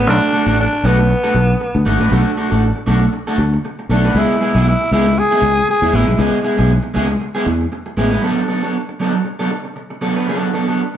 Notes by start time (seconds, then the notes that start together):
0.07 B1 A3 D4 F#4 A4
0.33 A3 D4 F#4 A4
0.46 A1 A3 D4 F#4 A4
0.60 D4
0.73 muted clean electric guitar stroke
0.83 B1 A3 B3 D4 F#4 A4
0.98 muted clean electric guitar stroke
1.10 muted clean electric guitar stroke
1.23 A3 D4 F#4 A4
1.34 B1, muted clean electric guitar stroke
1.50 muted clean electric guitar stroke
1.61 muted clean electric guitar stroke
1.74 D2, muted clean electric guitar stroke
1.86 G#1 A3 D4 F#4 A4
2.01 A1 A3 D4 F#4 B4
2.12 B1 A3 D4 F#4 A4
2.37 A3 D4 F#4 A4
2.51 A1 A3 D4 F#4 A4
2.76 muted clean electric guitar stroke
2.87 B1 A3 D4 F#4 A4
3.01 muted clean electric guitar stroke
3.13 muted clean electric guitar stroke
3.27 A3 D4 F#4 A4
3.38 D2, muted clean electric guitar stroke
3.54 muted clean electric guitar stroke
3.65 muted clean electric guitar stroke
3.79 muted clean electric guitar stroke
3.89 B1 A3 D4 F#4 A4
4.05 A3 D4 F#4 B4
4.15 C#2 G#3 B3 E4 G#4
4.41 G#3 B3 E4 G#4
4.55 B1 G#3 B3 E4 G#4
4.68 E4
4.82 muted clean electric guitar stroke
4.91 C#2 G#3 B3 E4 G#4
5.07 muted clean electric guitar stroke
5.17 G#4, muted clean electric guitar stroke
5.31 G#3 B3 E4 G#4
5.42 C#2, muted clean electric guitar stroke
5.57 muted clean electric guitar stroke
5.69 G#4, muted clean electric guitar stroke
5.82 E2 G#3 B3 E4 G#4
5.93 A1 G#3 B3 E4 G#4
6.08 B1, muted clean electric guitar stroke
6.18 C#2 G#3 B3 E4 G#4
6.43 G#3 B3 E4 G#4
6.58 B1 G#3 B3 E4 G#4
6.83 muted clean electric guitar stroke
6.94 C#2 G#3 B3 E4 G#4
7.08 muted clean electric guitar stroke
7.21 muted clean electric guitar stroke
7.35 G#3 B3 E4 G#4
7.46 E2, muted clean electric guitar stroke
7.61 muted clean electric guitar stroke
7.72 muted clean electric guitar stroke
7.86 muted clean electric guitar stroke
7.97 A1 G#3 B3 E4 G#4
8.11 G#3 B3 E4 B4
8.22 F#3 B3 D4 A4
8.48 F#3 B3 D4 A4
8.63 F#3 B3 D4 A4
8.89 muted clean electric guitar stroke
9.00 F#3 B3 D4 A4
9.13 muted clean electric guitar stroke
9.25 muted clean electric guitar stroke
9.39 F#3 B3 D4 A4
9.50 muted clean electric guitar stroke
9.64 muted clean electric guitar stroke
9.76 muted clean electric guitar stroke
9.90 muted clean electric guitar stroke
10.01 F#3 B3 D4 A4
10.16 F#3 B3 D4 B4
10.27 F#3 B3 D4 A4
10.53 F#3 B3 D4 A4
10.68 F#3 B3 D4 A4